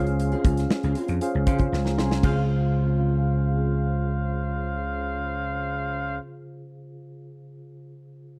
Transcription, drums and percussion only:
0.07 closed hi-hat soft
0.20 closed hi-hat medium
0.32 closed hi-hat soft
0.45 kick loud
0.45 closed hi-hat medium
0.57 snare soft
0.57 closed hi-hat medium
0.70 snare loud
0.83 closed hi-hat soft
0.95 closed hi-hat medium
1.08 closed hi-hat soft
1.21 closed hi-hat medium
1.47 kick medium
1.47 closed hi-hat medium
1.59 kick medium
1.59 closed hi-hat soft
1.73 snare medium
1.86 snare medium
1.98 snare medium
2.11 snare medium
2.23 kick loud
2.23 crash medium

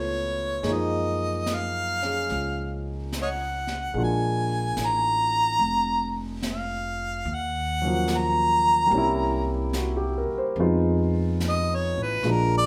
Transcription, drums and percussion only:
0.63 brush sweep soft
0.63 snare soft
1.46 snare soft
1.46 hi-hat pedal soft
2.02 snare soft
2.29 brush sweep soft
2.29 snare soft
3.12 snare soft
3.12 hi-hat pedal soft
3.67 snare soft
3.95 brush sweep soft
4.77 snare soft
4.77 hi-hat pedal soft
5.59 brush sweep soft
6.42 snare soft
6.42 hi-hat pedal soft
7.25 brush sweep soft
8.07 snare soft
8.07 hi-hat pedal medium
8.90 brush sweep soft
9.73 snare soft
9.73 hi-hat pedal medium
10.57 brush sweep soft
11.40 snare soft
11.40 hi-hat pedal soft
12.23 brush sweep soft
12.23 snare soft

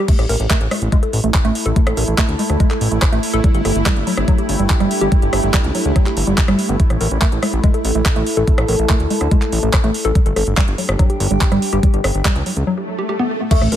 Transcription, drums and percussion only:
0.08 kick loud
0.08 closed hi-hat medium
0.08 crash medium
0.19 cross-stick soft
0.19 closed hi-hat medium
0.29 open hi-hat loud
0.40 closed hi-hat medium
0.50 kick loud
0.50 clap loud
0.50 closed hi-hat medium
0.61 closed hi-hat medium
0.71 cross-stick medium
0.71 open hi-hat loud
0.82 closed hi-hat medium
0.92 kick loud
0.92 closed hi-hat medium
1.03 closed hi-hat medium
1.13 open hi-hat loud
1.24 closed hi-hat medium
1.34 kick loud
1.34 cross-stick soft
1.34 clap loud
1.34 closed hi-hat medium
1.45 closed hi-hat medium
1.55 open hi-hat loud
1.66 closed hi-hat medium
1.76 kick loud
1.76 closed hi-hat medium
1.87 cross-stick medium
1.87 closed hi-hat medium
1.97 open hi-hat loud
2.08 closed hi-hat medium
2.18 kick loud
2.18 clap loud
2.18 closed hi-hat medium
2.29 closed hi-hat medium
2.39 open hi-hat loud
2.50 cross-stick soft
2.50 closed hi-hat medium
2.60 kick loud
2.60 closed hi-hat medium
2.71 clap soft
2.71 closed hi-hat medium
2.81 open hi-hat loud
2.92 closed hi-hat medium
3.02 kick loud
3.02 cross-stick medium
3.02 clap loud
3.02 closed hi-hat medium
3.13 closed hi-hat soft
3.23 open hi-hat loud
3.34 closed hi-hat medium
3.44 kick loud
3.44 closed hi-hat medium
3.55 closed hi-hat medium
3.65 cross-stick soft
3.65 open hi-hat loud
3.75 closed hi-hat soft
3.86 kick loud
3.86 clap loud
3.86 closed hi-hat medium
3.96 closed hi-hat medium
4.07 open hi-hat loud
4.17 cross-stick medium
4.17 closed hi-hat soft
4.28 kick loud
4.28 closed hi-hat medium
4.38 closed hi-hat soft
4.49 open hi-hat loud
4.70 kick loud
4.70 clap loud
4.70 closed hi-hat medium
4.80 cross-stick soft
4.80 closed hi-hat soft
4.91 open hi-hat loud
5.12 kick loud
5.12 closed hi-hat medium
5.22 closed hi-hat medium
5.33 cross-stick medium
5.33 open hi-hat loud
5.43 closed hi-hat soft
5.54 kick loud
5.54 clap loud
5.54 closed hi-hat medium
5.64 closed hi-hat medium
5.75 open hi-hat loud
5.85 closed hi-hat medium
5.96 kick loud
5.96 cross-stick soft
5.96 closed hi-hat medium
6.06 clap soft
6.06 closed hi-hat medium
6.17 open hi-hat loud
6.27 closed hi-hat soft
6.38 kick loud
6.38 clap loud
6.38 closed hi-hat medium
6.48 cross-stick medium
6.48 closed hi-hat soft
6.59 open hi-hat loud
6.69 closed hi-hat soft
6.80 kick loud
6.80 closed hi-hat medium
6.90 cross-stick soft
6.90 closed hi-hat medium
7.01 open hi-hat loud
7.11 closed hi-hat soft
7.22 kick loud
7.22 clap loud
7.22 closed hi-hat medium
7.32 closed hi-hat medium
7.43 cross-stick medium
7.43 open hi-hat loud
7.53 closed hi-hat soft
7.64 kick loud
7.64 closed hi-hat medium
7.74 closed hi-hat medium
7.85 open hi-hat loud
7.95 closed hi-hat soft
8.06 kick loud
8.06 cross-stick soft
8.06 clap loud
8.06 closed hi-hat medium
8.16 closed hi-hat soft
8.27 open hi-hat loud
8.37 closed hi-hat soft
8.47 kick loud
8.47 closed hi-hat medium
8.58 cross-stick medium
8.58 closed hi-hat medium
8.68 open hi-hat loud
8.79 closed hi-hat medium
8.89 kick loud
8.89 clap loud
8.89 closed hi-hat medium
9.00 closed hi-hat medium
9.10 open hi-hat loud
9.21 cross-stick soft
9.21 closed hi-hat medium
9.31 kick loud
9.31 closed hi-hat medium
9.42 clap soft
9.42 closed hi-hat medium
9.52 open hi-hat loud
9.63 closed hi-hat medium
9.73 kick loud
9.73 cross-stick medium
9.73 clap loud
9.73 closed hi-hat medium
9.84 closed hi-hat soft
9.94 open hi-hat loud
10.05 closed hi-hat medium
10.15 kick loud
10.15 closed hi-hat medium
10.26 closed hi-hat medium
10.36 cross-stick soft
10.36 open hi-hat loud
10.57 kick loud
10.57 clap loud
10.57 closed hi-hat medium
10.68 closed hi-hat medium
10.78 open hi-hat loud
10.89 cross-stick medium
10.99 kick loud
10.99 closed hi-hat medium
11.10 closed hi-hat medium
11.20 open hi-hat loud
11.31 closed hi-hat medium
11.41 kick loud
11.41 clap loud
11.41 closed hi-hat medium
11.52 cross-stick soft
11.52 closed hi-hat medium
11.62 open hi-hat loud
11.73 closed hi-hat medium
11.83 kick loud
11.83 closed hi-hat medium
11.94 closed hi-hat medium
12.04 cross-stick medium
12.04 open hi-hat loud
12.15 closed hi-hat medium
12.25 kick loud
12.25 clap loud
12.25 closed hi-hat medium
12.36 closed hi-hat medium
12.46 open hi-hat loud
12.57 closed hi-hat medium
13.51 kick loud
13.51 closed hi-hat medium
13.51 crash loud
13.61 cross-stick soft
13.72 open hi-hat loud

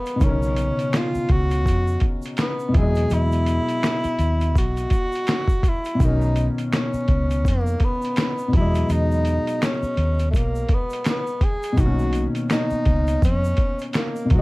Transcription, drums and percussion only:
0.06 closed hi-hat soft
0.06 shaker medium
0.21 kick loud
0.21 closed hi-hat medium
0.21 shaker medium
0.42 shaker soft
0.56 closed hi-hat medium
0.56 shaker soft
0.79 closed hi-hat soft
0.79 shaker soft
0.93 finger snap medium
0.93 snare loud
0.93 closed hi-hat medium
0.93 shaker medium
1.15 shaker soft
1.29 kick medium
1.29 closed hi-hat medium
1.51 closed hi-hat soft
1.51 shaker soft
1.66 kick medium
1.66 closed hi-hat medium
1.66 shaker medium
1.87 shaker medium
2.00 kick medium
2.00 closed hi-hat medium
2.22 closed hi-hat soft
2.22 shaker soft
2.37 finger snap medium
2.37 snare loud
2.37 closed hi-hat medium
2.37 shaker medium
2.59 shaker soft
2.74 kick loud
2.74 closed hi-hat medium
2.95 closed hi-hat medium
2.95 shaker soft
3.10 closed hi-hat medium
3.10 shaker medium
3.32 closed hi-hat soft
3.32 shaker soft
3.46 closed hi-hat medium
3.46 shaker soft
3.69 closed hi-hat soft
3.69 shaker soft
3.83 finger snap medium
3.83 snare loud
3.83 closed hi-hat medium
3.83 shaker medium
4.04 closed hi-hat soft
4.04 shaker medium
4.19 closed hi-hat medium
4.19 shaker soft
4.41 closed hi-hat soft
4.41 shaker soft
4.56 kick medium
4.56 closed hi-hat medium
4.56 shaker medium
4.77 closed hi-hat soft
4.77 shaker medium
4.90 kick medium
4.90 closed hi-hat medium
4.90 shaker medium
5.12 closed hi-hat soft
5.12 shaker soft
5.27 finger snap medium
5.27 snare loud
5.27 closed hi-hat medium
5.27 shaker medium
5.48 kick medium
5.48 shaker soft
5.63 kick medium
5.63 closed hi-hat medium
5.63 shaker soft
5.85 closed hi-hat medium
5.85 shaker soft
6.00 kick loud
6.00 closed hi-hat medium
6.00 shaker medium
6.22 shaker soft
6.36 closed hi-hat medium
6.36 shaker soft
6.58 closed hi-hat medium
6.58 shaker soft
6.73 finger snap medium
6.73 snare loud
6.73 closed hi-hat medium
6.73 shaker medium
6.94 shaker medium
7.08 kick medium
7.08 closed hi-hat medium
7.30 closed hi-hat soft
7.30 shaker soft
7.45 kick medium
7.45 closed hi-hat medium
7.45 shaker medium
7.67 shaker medium
7.80 kick medium
7.80 closed hi-hat medium
8.02 closed hi-hat soft
8.02 shaker medium
8.16 finger snap medium
8.16 snare loud
8.16 closed hi-hat medium
8.16 shaker medium
8.38 shaker soft
8.53 kick loud
8.53 closed hi-hat medium
8.75 closed hi-hat medium
8.75 shaker medium
8.89 closed hi-hat medium
8.89 shaker medium
9.11 shaker soft
9.25 closed hi-hat medium
9.25 shaker soft
9.47 closed hi-hat soft
9.47 shaker soft
9.62 finger snap medium
9.62 snare loud
9.62 closed hi-hat medium
9.62 shaker medium
9.83 shaker soft
9.97 closed hi-hat medium
10.19 closed hi-hat soft
10.19 shaker soft
10.34 kick medium
10.34 closed hi-hat medium
10.34 shaker medium
10.55 shaker medium
10.69 kick medium
10.69 closed hi-hat medium
10.90 closed hi-hat soft
10.90 shaker soft
11.04 finger snap medium
11.04 snare loud
11.04 closed hi-hat medium
11.04 shaker medium
11.27 shaker soft
11.41 kick medium
11.41 closed hi-hat medium
11.63 closed hi-hat medium
11.63 shaker medium
11.77 kick loud
11.77 closed hi-hat medium
11.77 shaker medium
11.99 shaker soft
12.13 closed hi-hat medium
12.13 shaker soft
12.35 closed hi-hat medium
12.35 shaker soft
12.50 finger snap loud
12.50 snare loud
12.50 closed hi-hat medium
12.50 shaker medium
12.70 shaker soft
12.85 kick medium
12.85 closed hi-hat medium
13.07 closed hi-hat soft
13.07 shaker soft
13.22 kick medium
13.22 closed hi-hat medium
13.22 shaker medium
13.44 shaker medium
13.57 kick medium
13.57 closed hi-hat medium
13.79 closed hi-hat soft
13.79 shaker medium
13.93 finger snap medium
13.93 snare loud
13.93 closed hi-hat medium
13.93 shaker medium
14.16 shaker soft
14.30 kick loud
14.30 closed hi-hat medium

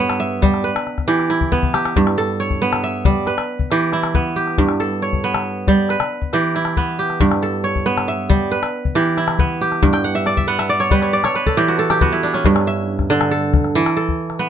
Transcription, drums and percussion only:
0.10 calabash click soft
0.43 calabash thump medium
0.54 calabash click soft
0.76 calabash click soft
0.87 calabash click soft
0.98 calabash thump soft
0.98 calabash click soft
1.09 calabash click soft
1.19 calabash click soft
1.30 calabash click soft
1.41 calabash thump soft
1.52 calabash thump soft
1.63 calabash thump soft
1.74 calabash click soft
1.85 calabash click soft
1.96 calabash thump medium
2.07 calabash click soft
2.18 calabash click soft
2.50 calabash thump soft
2.73 calabash click soft
3.05 calabash thump medium
3.27 calabash click soft
3.38 calabash click soft
3.59 calabash thump soft
3.71 calabash click soft
3.93 calabash click soft
4.03 calabash click soft
4.14 calabash thump medium
4.47 calabash click soft
4.58 calabash thump medium
4.69 calabash click soft
4.80 calabash click soft
5.13 calabash thump soft
5.35 calabash click soft
5.67 calabash thump medium
5.89 calabash click soft
6.00 calabash click soft
6.22 calabash thump soft
6.33 calabash click soft
6.55 calabash click soft
6.65 calabash click soft
6.77 calabash thump soft
7.10 calabash click soft
7.20 calabash thump soft
7.32 calabash click soft
7.43 calabash click soft
7.76 calabash thump soft
7.98 calabash click soft
8.30 calabash thump medium
8.53 calabash click soft
8.63 calabash click soft
8.85 calabash thump soft
8.96 calabash click soft
9.17 calabash click soft
9.28 calabash click soft
9.39 calabash thump medium
9.72 calabash click soft
9.83 calabash thump medium
9.83 calabash click soft
9.94 calabash click soft
10.26 calabash click soft
10.37 calabash thump soft
10.59 calabash click soft
10.81 calabash click soft
10.91 calabash thump medium
11.02 calabash click soft
11.24 calabash click soft
11.35 calabash click soft
11.46 calabash thump soft
11.69 calabash click soft
11.90 calabash click soft
12.01 calabash thump medium
12.01 calabash click soft
12.13 calabash click soft
12.23 calabash click soft
12.34 calabash click soft
12.44 calabash thump medium
12.56 calabash click soft
12.99 calabash thump medium
12.99 calabash click soft
13.10 calabash click soft
13.21 calabash click medium
13.54 calabash thump medium
13.54 calabash click soft
13.64 calabash click soft
13.76 calabash click soft
13.86 calabash click medium
13.97 calabash click soft
14.09 calabash thump soft
14.30 calabash click soft

